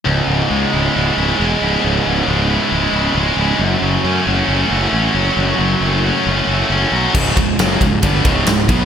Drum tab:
CC |--------|--------|--------|--------|
RD |--------|--------|--------|--------|
SD |--------|--------|--------|--------|
BD |--------|--------|--------|--------|

CC |x-------|
RD |-xxxxxxx|
SD |--o---o-|
BD |oo-ooo-o|